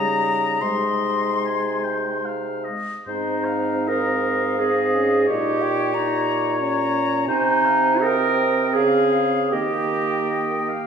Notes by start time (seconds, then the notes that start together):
Already playing: C#3 G3 D#4 D#5 A#5
0.61 C3 G#3 D#4 D#5 C6
1.46 G#5
1.84 G5
2.25 F5
2.64 D#5
3.06 G#2 C4 D#4 C5 D#5
3.45 F5
3.87 A#4 D#5 F5
4.59 C4 G#4 D#5
4.95 C#4
5.27 A#2 D#4 G4 C#5 D#5
5.62 G5
5.94 D#4 A#5
6.60 C#4 A#5
7.27 C3 C4 D#4 C5 G#5
7.65 F5
8.01 A#4 D#5 G5
8.40 D#5
8.74 C#3 G#4 F5
9.12 F5
9.51 D#3 A#3 G4 D#5 G5
10.29 D#5
10.69 F5